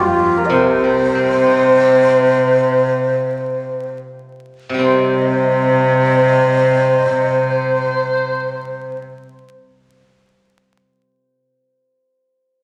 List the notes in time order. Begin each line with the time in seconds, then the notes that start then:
Already playing: F2 G3 D#4 F4 G4 A#4 C5 D#5
0.37 A#4
0.45 C3 D#5
0.50 C3 C5
0.84 G3
1.15 C4
1.46 D#4
1.80 G4
4.69 C3
4.74 G3
4.78 C3 C4 C5
4.82 C5
4.93 D#5
5.04 C5
5.15 D#5
5.28 C5
5.39 D#5
5.51 C5
5.62 D#5
5.70 C5
5.83 D#5
5.95 C5
6.06 D#5
6.16 C5
6.24 D#5
6.36 C5
6.47 D#5
6.58 C5
6.71 D#5
6.81 C5
6.94 D#5
7.05 C5
7.15 D#5
7.28 C5